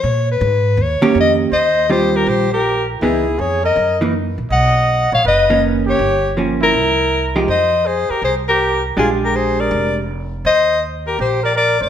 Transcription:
X:1
M:4/4
L:1/8
Q:"Swing" 1/4=161
K:Ebmix
V:1 name="Soprano saxophone"
d _c3 d2 e z | [K:Eb] e2 c B c B2 z | A2 _d e2 z3 | ^f3 =f ^d2 z ^c- |
^c2 z B4 z | e2 c B c B2 z | A B c d2 z3 | e2 z B c d d e |]
V:2 name="Trumpet"
z8 | [K:Eb] c2 G G G G2 z | _F2 A B2 z3 | ^d3 ^c =B2 z G- |
G2 z _F4 z | c2 A G A G2 z | F G A B2 z3 | c2 z G G B B _d |]
V:3 name="Hollow-body jazz guitar"
z4 z [E,B,DG]3 | [K:Eb] z2 [E,G,CF]3 z3 | [_F,_CE] z4 [F,B,E] z2 | z4 z [^D,^A,^C]3 |
z2 [F,B,_D]2 z3 [F,^G,^D=G] | z8 | [A,DG]4- [A,DG] z3 | z8 |]
V:4 name="Upright bass" clef=bass
B,,2 A,,2 E,, z F,,2 | [K:Eb] E,,4 B,,,4 | _D,,2 F,,2 _G,,3 B,,, | =B,,,3 ^A,,, ^F,,,4 |
G,,,4 C,,4 | F,,3 z C,,4 | B,,,4 F,,,4 | E,,4 B,,,3 _G,,, |]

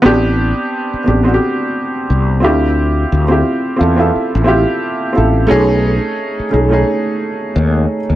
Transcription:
X:1
M:4/4
L:1/16
Q:"Swing 16ths" 1/4=88
K:Am
V:1 name="Upright piano"
[B,CDG]6 [B,CDG] [B,CD^FG]6- [B,CDFG] [CE=FG]2- | [CEFG]3 [CEFG]3 [CEFA] [CEFA]3 [CEFG]4 [CEFA]2 | [A,^C^D^G]6 [A,CDG] [A,CDG]8 z |]
V:2 name="Fretless electric bass" clef=bass
A,,,3 z3 A,,,2 z4 C,,2 D,,2- | D,,2 D,,2 z2 E,,2 z A,,,2 z3 A,,,2 | B,,,3 z3 B,,,2 z4 ^D,,2 z D,, |]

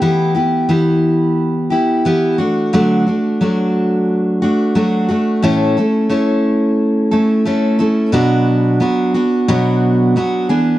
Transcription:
X:1
M:4/4
L:1/8
Q:"Swing 16ths" 1/4=89
K:Bm
V:1 name="Steel-string acoustic guitar"
[E,B,EG] [B,EG] [E,B,EG]3 [B,EG] [E,B,EG] [A,DF] | [D,F,A,DF] [A,DF] [F,A,DF]3 [A,DF] [F,A,DF] [A,DF] | [A,,E,A,CEA] [A,CEA] [A,CEA]3 [A,CEA] [A,CEA] [A,CEA] | [B,,F,B,DF]2 [F,B,DF] [B,DF] [B,,F,B,DF]2 [F,B,DF] [E,B,D^G] |]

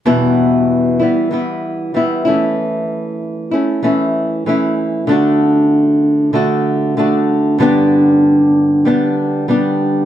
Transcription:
X:1
M:4/4
L:1/8
Q:"Swing 16ths" 1/4=95
K:Amix
V:1 name="Nylon-string guitar"
[E,,B,,E,G,B,E]3 [E,G,B,E] [E,G,B,E]2 [E,G,B,E] [E,A,CE]- | [E,A,CE]3 [A,CE] [E,A,CE]2 [E,A,CE]2 | [D,A,DF]4 [D,A,DF]2 [D,A,DF]2 | [G,,D,G,B,DG]4 [G,B,DG]2 [G,B,DG]2 |]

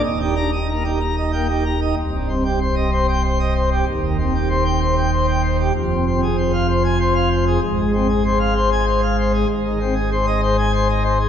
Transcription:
X:1
M:3/4
L:1/16
Q:1/4=96
K:Eb
V:1 name="Pipe organ"
[E,,e] [EG] [Db] [Ee] [B,b] [EG] b [Ee] [B,g] [EG] b [Ee] | [K:Cm] C,, G,, C G c e c g c e c G | E,, E, C G c g c g c g c G | F,, C, C A c f c a c f c A |
A,, A, C A c f c a c f c A | [K:Ab] A,, E, C A c e c a c e c A |]
V:2 name="Pipe organ" clef=bass
E,,,12 | [K:Cm] C,,,12 | E,,,12 | F,,,12 |
A,,,12 | [K:Ab] A,,,12 |]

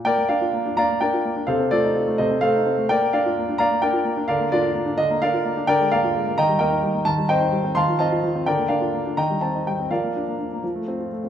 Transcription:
X:1
M:6/8
L:1/16
Q:3/8=85
K:Bb
V:1 name="Grand piano"
[Bdg]2 [Bdf]4 [dfb]2 [Bdg]4 | [Acf]2 [FAd]4 [Ace]2 [Acf]4 | [Bdg]2 [Bdf]4 [dfb]2 [Bdg]4 | [Bdf]2 [FBd]4 e2 [Bdf]4 |
[Bdg]2 [Bdf]4 [egb]2 [Beg]4 | a2 [ceg]4 [fac']2 [efa]4 | [Bdg]2 [Bdf]4 [egb]2 a2 g2 | [Bdf]8- [Bdf]2 z2 |]
V:2 name="Grand piano"
B, B, D F B, D B, B, D F B, D | C, C A, E C A, C, C A, E C A, | B, B, D F B, D B, B, D F B, D | D, B, D F B, D D, B, D F B, D |
D, _A, B, F A, B, E, G, B, E G, B, | E, G, C E G, C E, F, C F F, C | D, B, D F B, D E, G, C E G, C | F, B, D B, D B, F, A, C F A, C |]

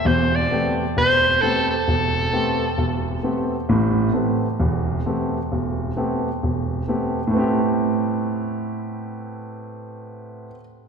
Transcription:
X:1
M:4/4
L:1/8
Q:"Swing" 1/4=132
K:Am
V:1 name="Soprano saxophone"
c d2 z c2 A A- | A6 z2 | z8 | z8 |
z8 | z8 |]
V:2 name="Grand piano"
[E,,,E,,]2 [A,B,CG] z E,,,2 [A,B,CG] z | E,,,2 [A,B,CG] z E,,,2 [A,B,CG] z | [A,,,A,,]2 [A,B,CG] z [E,,,E,,]2 [A,B,CG] z | E,,,2 [A,B,CG] z E,,,2 [A,B,CG] z |
[A,,A,B,CG]8- | [A,,A,B,CG]8 |]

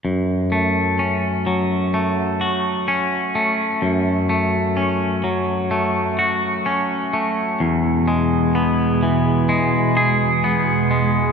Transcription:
X:1
M:4/4
L:1/8
Q:1/4=64
K:F#m
V:1 name="Clean electric guitar"
F,, A, C F, A, F C A, | F,, A, C F, A, F C A, | E,, G, B, E, G, G B, G, |]
V:2 name="Ambient pad" clef=bass
z8 | z8 | [E,,B,,G,]8 |]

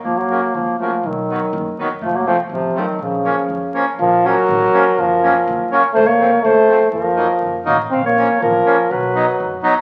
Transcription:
X:1
M:2/4
L:1/16
Q:1/4=122
K:Bbm
V:1 name="Clarinet"
B, B,3 B,2 =A,2 | ^F,6 z2 | =A, B, A,2 F,2 G,2 | F,6 z2 |
B2 B6 | B6 z2 | c d3 c4 | B6 z2 |
f d3 B4 | =B6 z2 |]
V:2 name="Accordion"
z2 [D,G,B,]2 z2 [D,G,B,]2 | z2 [^D,^F,=B,]2 z2 [D,F,B,]2 | z2 [F,=A,C]2 z2 [F,A,C]2 | z2 [F,B,D]2 z2 [F,B,D]2 |
z2 [F,B,D]2 z2 [F,B,D]2 | z2 [G,B,D]2 z2 [G,B,D]2 | z2 [F,=A,C]2 z2 [F,A,C]2 | z2 [G,B,E]2 z2 [G,B,E]2 |
z2 [F,B,D]2 z2 [F,B,D]2 | z2 [^F,=B,^D]2 z2 [F,B,D]2 |]
V:3 name="Euphonium" clef=bass
F, G,3 F,2 F,2 | ^D,6 z2 | F, G, F,2 C,2 E,2 | D,6 z2 |
F,2 G,6 | F,6 z2 | =A, B,3 A,4 | F,6 z2 |
C B,3 F,4 | ^F,6 z2 |]
V:4 name="Upright bass" clef=bass
G,,,4 D,,2 z2 | =B,,,4 ^F,,,2 z2 | F,,,4 =A,,,2 z2 | B,,,4 F,,2 z2 |
B,,,4 =A,,,2 z2 | G,,,4 G,,,2 z2 | F,,,4 D,,2 z2 | G,,,4 G,,,2 =A,,,2 |
B,,,4 =A,,,2 z2 | =B,,,4 ^F,,2 z2 |]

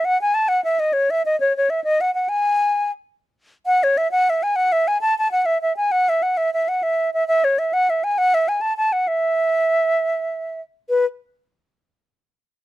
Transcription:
X:1
M:12/8
L:1/16
Q:3/8=133
K:E
V:1 name="Flute"
f2 g2 a2 f2 e2 d2 c2 e2 d2 c2 c2 e2 | d2 f2 f2 g8 z8 z2 | f2 c2 e2 f2 e2 g2 f2 e2 g2 a2 a2 f3/2 f/2 | e2 e2 g2 f2 e2 f2 e2 e2 f2 e4 e2 |
e2 c2 e2 f2 e2 g2 f2 e2 g2 a2 a2 f2 | e16- e4 z4 | B2 z16 z6 |]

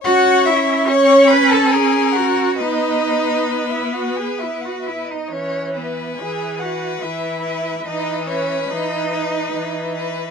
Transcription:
X:1
M:3/4
L:1/16
Q:1/4=71
K:Bmix
V:1 name="Violin"
f2 e2 c'2 b a g2 f2 | d4- d e f g e f e d | c2 B2 g2 f2 e4 | d2 c2 d6 z2 |]
V:2 name="Violin"
c4 c2 B2 ^A4 | B12 | z2 B4 B4 B2 | B2 B4 B4 B2 |]
V:3 name="Cello"
F2 E2 c2 B A G2 F2 | D4- D E F G E F E D | C2 B,2 G2 F2 E4 | D2 C2 D6 z2 |]
V:4 name="Viola" clef=bass
C12 | B,12 | E,4 E,4 E,4 | E,4 E,4 E,4 |]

